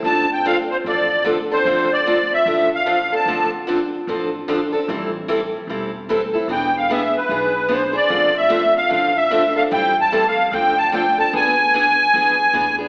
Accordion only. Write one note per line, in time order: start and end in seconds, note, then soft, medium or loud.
0.06 0.31 A5 loud
0.33 0.45 G5 medium
0.47 0.57 F5 loud
0.71 0.77 C5 medium
0.88 1.24 D5 medium
1.53 1.93 C5 medium
1.93 2.33 D5 medium
2.34 2.70 E5 medium
2.75 3.14 F5 medium
3.16 3.51 A5 medium
6.52 6.76 G5 medium
6.77 6.91 F5 medium
6.92 7.16 E5 medium
7.17 7.73 B4 medium
7.71 7.96 C5 medium
7.96 8.37 D5 loud
8.37 8.74 E5 medium
8.77 8.91 F5 loud
8.92 9.17 F5 medium
9.17 9.54 E5 medium
9.57 9.63 F5 loud
9.73 9.97 G5 loud
10.01 10.27 A5 loud
10.28 10.54 F5 medium
10.54 10.78 G5 loud
10.78 10.92 A5 loud
10.94 11.19 G5 medium
11.19 11.34 A5 loud
11.36 12.76 G#5 loud